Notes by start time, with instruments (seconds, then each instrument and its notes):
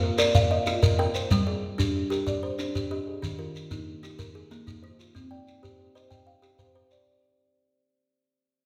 Already playing: kalimba F4
0.03 kalimba A#4
0.18 kalimba A#4 D5, shekere
0.35 kalimba F5, shekere
0.51 kalimba D#5
0.67 kalimba F4, shekere
0.83 kalimba A#4, shekere
0.99 kalimba A#4 G5
1.15 kalimba C5, shekere
1.31 kalimba G3, shekere
1.47 kalimba G#4 D5
1.78 kalimba D4 G4, shekere
1.96 kalimba G4
2.10 kalimba G4 A#4, shekere
2.27 kalimba D5, shekere
2.43 kalimba C5
2.59 kalimba D4, shekere
2.75 kalimba G4, shekere
2.91 kalimba G4 D#5
3.07 kalimba G#4
3.22 kalimba D#3, shekere
3.39 kalimba F4 A#4
3.56 shekere
3.71 kalimba A#3 D#4, shekere
4.03 kalimba D#4 G4, shekere
4.19 kalimba A#4, shekere
4.35 kalimba G#4
4.51 kalimba A#3, shekere
4.66 kalimba D#4, shekere
4.82 kalimba D#4 C5
4.99 kalimba F4, shekere
5.15 kalimba C4, shekere
5.31 kalimba D5 G5
5.48 shekere
5.63 kalimba G4 C5, shekere
5.79 kalimba C5
5.95 kalimba C5 D#5, shekere
6.11 kalimba G5, shekere
6.27 kalimba F5
6.42 kalimba G4, shekere
6.59 kalimba C5, shekere
6.75 kalimba C5
6.91 kalimba D5, shekere